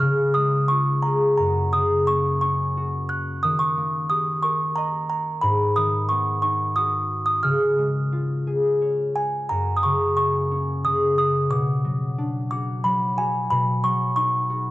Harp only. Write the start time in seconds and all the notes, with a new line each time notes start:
Already playing: A#3 D#4
0.02 C#3
0.37 G#3
0.71 F4
1.06 G#4
1.39 F#2
1.73 C#3
2.08 A#3
2.43 C#4
2.77 F#4
3.44 D#3
3.78 A#3
4.10 G4
4.43 A#4
4.78 D#5
5.43 G#2
5.77 D#3
6.11 B3
6.43 D#4
6.77 F#4
7.44 C#3
7.78 G#3
8.12 F4
8.47 G#4
8.82 C#5
9.50 F#2
9.84 C#3
10.18 A#3
10.51 C#4
10.86 C#3
11.18 C#4
11.50 B2
11.84 F#3
12.18 D4
12.52 F#4
12.84 F#3
13.17 F#4
13.51 B2
13.83 F#3
14.16 D#4
14.50 F#4